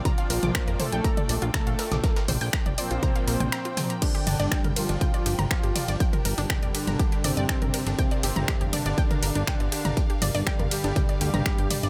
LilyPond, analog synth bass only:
\new Staff \with { instrumentName = "Analog synth bass" } { \clef bass \time 4/4 \key g \minor \tempo 4 = 121 r8 bes,,16 bes,,16 r16 f,,16 r16 bes,,16 r8 bes,,16 bes,,16 r16 bes,,16 r16 bes,,16 | r8 bes,,16 bes,,16 r16 f,,16 r16 bes,,16 r8 bes,,16 bes,,16 r4 | r8 g,,16 g,,16 r16 f,,16 r16 g,,16 r8 g,,16 g,,16 r16 g,,16 r16 g,,16 | r8 g,,16 g,,16 r16 f,,16 r16 g,,16 r8 g,,16 g,,16 r16 g,,16 r16 g,,16 |
r8 g,,16 g,,16 r16 f,,16 r16 g,,16 r8 g,,16 g,,16 r16 g,,16 r16 g,,16 | r8 g,,16 g,,16 r16 f,,16 r16 g,,16 r8 d,16 g,,16 r16 g,,16 r16 g,,16 | }